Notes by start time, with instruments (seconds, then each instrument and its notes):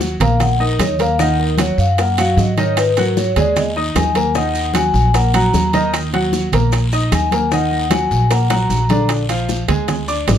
Already playing: upright bass D#2, grand piano F#3 F#4 F#5
0.00 high bongo, high conga, short guiro, maracas
0.20 upright bass A#1, grand piano A#3 A#4 A#5, vibraphone F5, high conga, low conga, high timbale, short guiro, maracas
0.40 vibraphone F#5, high bongo, high conga, low conga, high timbale, long guiro, maracas
0.60 grand piano D#4 D#5 D#6, vibraphone A#4, high bongo, high conga
0.79 upright bass D#2, vibraphone C#5, high bongo, low bongo, high conga, high timbale, short guiro, maracas
0.99 grand piano A#3 A#4 A#5, vibraphone F5, high bongo, high conga, high timbale, short guiro, maracas
1.19 grand piano D#3 D#4 D#5, vibraphone F#5, high bongo, high conga, long guiro, maracas
1.38 vibraphone A#4, high bongo, high conga
1.58 grand piano F#3 F#4 F#5, vibraphone C#5, high bongo, high conga, high timbale, short guiro, maracas
1.78 upright bass F#2, vibraphone F5, high conga, short guiro, maracas
1.98 grand piano A#3 A#4 A#5, vibraphone F#5, high bongo, high conga, high timbale, long guiro, maracas
2.17 grand piano F#3 F#4 F#5, vibraphone F5, high bongo, high conga, high timbale, maracas
2.37 upright bass G#2, vibraphone D#5, high bongo, low bongo, high conga, short guiro, maracas
2.57 grand piano D#3 D#4 D#5, vibraphone C#5, high bongo, high conga, high timbale, short guiro, maracas
2.77 vibraphone B4, high bongo, high conga, high timbale, long guiro, maracas
2.97 grand piano F#3 F#4 F#5, high bongo, high conga, high timbale, maracas
3.17 vibraphone C#5, high bongo, high conga, short guiro, maracas
3.36 upright bass D#2, grand piano G#3 G#4 G#5, vibraphone D5, high conga, low conga, high timbale, short guiro, maracas
3.56 high bongo, high conga, low conga, high timbale, long guiro, maracas
3.76 grand piano D#4 D#5 D#6, high bongo, high conga
3.95 upright bass D#2, vibraphone G#5, high bongo, low bongo, high conga, high timbale, low timbale, short guiro, maracas
4.15 grand piano A#3 A#4 A#5, high bongo, high conga, high timbale, short guiro, maracas
4.35 grand piano D#3 D#4 D#5, vibraphone F#5, high bongo, long guiro, maracas
4.55 high bongo, high conga, maracas
4.74 grand piano F#3 F#4 F#5, vibraphone G#5, high bongo, high conga, high timbale, short guiro, maracas
4.94 upright bass A#1, high conga, short guiro, maracas
5.14 grand piano A#3 A#4 A#5, vibraphone F#5, high bongo, high conga, high timbale, long guiro, maracas
5.34 grand piano F#3 F#4 F#5, vibraphone A#5, high bongo, high conga, high timbale, maracas
5.53 upright bass D#2, high bongo, low bongo, high conga, short guiro, maracas
5.73 grand piano D#3 D#4 D#5, high bongo, high conga, high timbale, short guiro, maracas
5.93 high bongo, high conga, high timbale, long guiro, maracas
6.12 grand piano F#3 F#4 F#5, high bongo, high conga, high timbale
6.32 high bongo, high conga, short guiro, maracas
6.52 upright bass A#1, grand piano A#3 A#4 A#5, high conga, low conga, high timbale, short guiro, maracas
6.72 high bongo, high conga, high timbale, long guiro, maracas
6.92 grand piano D#4 D#5 D#6, high bongo, high conga, maracas
7.12 upright bass D#2, vibraphone G#5, high bongo, low bongo, high conga, high timbale, short guiro, maracas
7.31 grand piano A#3 A#4 A#5, high bongo, high conga, high timbale, short guiro, maracas
7.51 grand piano D#3 D#4 D#5, vibraphone F#5, high bongo, high conga, long guiro, maracas
7.71 high bongo, high conga
7.91 grand piano F#3 F#4 F#5, vibraphone G#5, high bongo, high conga, high timbale, short guiro, maracas
8.11 upright bass A#1, high conga, short guiro, maracas
8.30 grand piano A#3 A#4 A#5, vibraphone F#5, high bongo, high conga, high timbale, long guiro, maracas
8.50 grand piano F#3 F#4 F#5, vibraphone A#5, high bongo, high conga, high timbale, maracas
8.70 upright bass A#1, high conga, short guiro, maracas
8.89 grand piano D3 D4 D5, low bongo, high conga, high timbale, short guiro, maracas
9.09 high bongo, high conga, high timbale, long guiro, maracas
9.29 grand piano F3 F4 F5, high bongo, high conga, high timbale, maracas
9.49 high bongo, high conga, short guiro, maracas
9.68 upright bass D2, grand piano G#3 G#4 G#5, high conga, low conga, high timbale, short guiro, maracas
9.88 high bongo, high conga, low conga, high timbale, long guiro, maracas
10.08 grand piano D4 D5 D6, high bongo, high conga, maracas
10.27 upright bass G#1, high bongo, low bongo, high conga, high timbale, low timbale, short guiro, maracas